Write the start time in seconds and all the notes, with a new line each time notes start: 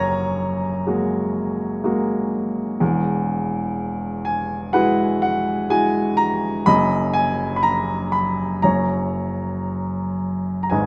Already playing: F#1 F#2 A#4 C#5 F#5 G#5 A#5
0.87 G#3 A#3 F#4
1.84 G#3 A#3 F#4
2.80 E1 E2
4.25 G#5
4.73 G#3 E4 F#4 B4 F#5
5.22 F#5
5.70 G#3 E4 F#4 G#5
6.17 A#5
6.66 F#1 F#2 D#5 B5
7.14 G#5
7.56 B5
7.63 A#5
8.12 B5
8.62 F#1 F#2 C#5 A#5
10.63 A#5
10.70 G#1 G#2 B4 D#5 G#5